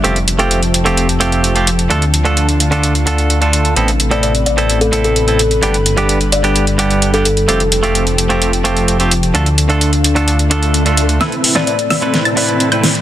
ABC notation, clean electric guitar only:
X:1
M:4/4
L:1/16
Q:1/4=129
K:Am
V:1 name="Clean electric guitar"
[A,CFG] z2 [A,CFG]2 z2 [A,CFG]2 z [A,CFG]3 [A,CFG] z2 | [D,A,DFA] z2 [D,A,DFA]2 z2 [D,A,DFA]2 z [D,A,DFA]3 [D,A,DFA]3 | [A,,B,CEA] z2 [A,,B,CEA]2 z2 [A,,B,CEA]2 z [A,,B,CEA]3 [A,,B,CEA] z2 | [G,,G,B,DG] z2 [G,,G,B,DG]2 z2 [G,,G,B,DG]2 z [G,,G,B,DG]3 [G,,G,B,DG] z2 |
[A,CFG] z2 [A,CFG]2 z2 [A,CFG]2 z [A,CFG]3 [A,CFG] z2 | [D,A,DFA] z2 [D,A,DFA]2 z2 [D,A,DFA]2 z [D,A,DFA]3 [D,A,DFA]3 | [A,,CEAB] z2 [A,,CEAB]2 z2 [A,,CEAB]2 z [A,,CEAB]3 [A,,CEAB] z2 |]